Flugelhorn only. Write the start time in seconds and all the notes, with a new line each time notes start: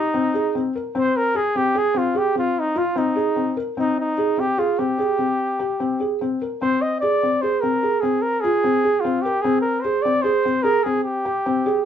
Already playing: D#4
0.98 C5
1.17 A#4
1.37 G#4
1.57 G4
1.78 G#4
1.98 F4
2.18 G4
2.38 F4
2.59 D#4
2.78 F4
2.98 D#4
3.79 D#4
4.00 D#4
4.40 G4
4.59 F4
4.79 G4
6.62 C5
6.82 D#5
7.01 D5
7.42 C5
7.61 A#4
8.01 G#4
8.22 A#4
8.41 G#4
9.00 F4
9.22 G4
9.41 G#4
9.62 A#4
9.81 C5
10.02 D5
10.22 C5
10.63 A#4
10.84 G#4
11.04 G4